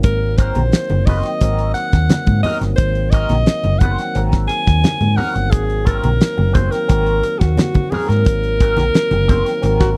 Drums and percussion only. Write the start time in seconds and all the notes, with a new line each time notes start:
0.03 kick, closed hi-hat
0.38 kick, closed hi-hat, muted conga
0.55 closed hi-hat, high conga
0.72 snare, closed hi-hat, muted conga
0.89 closed hi-hat, high conga
1.07 kick, open hi-hat, muted conga, low conga
1.23 snare, closed hi-hat
1.41 kick, closed hi-hat, muted conga
1.59 closed hi-hat
1.75 closed hi-hat, muted conga
1.92 kick, snare, closed hi-hat
2.09 snare, closed hi-hat, muted conga, high conga
2.27 kick, closed hi-hat, high conga
2.44 open hi-hat, muted conga, low conga
2.62 snare, closed hi-hat
2.78 kick, closed hi-hat
2.95 closed hi-hat
3.12 kick, closed hi-hat, muted conga
3.29 snare, closed hi-hat, high conga
3.46 snare, closed hi-hat, muted conga
3.64 closed hi-hat, high conga
3.81 kick, closed hi-hat, low conga
3.98 snare, closed hi-hat
4.15 closed hi-hat
4.32 kick, snare, closed hi-hat
4.49 closed hi-hat, muted conga
4.67 kick, snare, closed hi-hat
4.84 snare, closed hi-hat, muted conga, high conga
5.01 closed hi-hat, high conga
5.18 open hi-hat, low conga
5.36 closed hi-hat
5.51 kick, closed hi-hat, muted conga
5.70 closed hi-hat
5.86 kick, closed hi-hat, muted conga
6.04 closed hi-hat, high conga
6.20 snare, closed hi-hat, muted conga
6.38 high conga
6.55 kick, closed hi-hat, low conga
6.72 snare, closed hi-hat
6.89 kick, closed hi-hat, muted conga
7.06 closed hi-hat
7.23 closed hi-hat, muted conga
7.41 kick, snare, closed hi-hat
7.57 snare, closed hi-hat, muted conga, high conga
7.74 kick, closed hi-hat, high conga
7.92 open hi-hat, muted conga, low conga
8.10 snare, closed hi-hat
8.25 kick, closed hi-hat, muted conga
8.43 closed hi-hat
8.60 kick, closed hi-hat
8.77 snare, closed hi-hat, high conga
8.95 snare, closed hi-hat
9.11 closed hi-hat, high conga
9.29 kick, closed hi-hat, low conga
9.46 snare, closed hi-hat
9.63 closed hi-hat, muted conga
9.80 kick, snare, closed hi-hat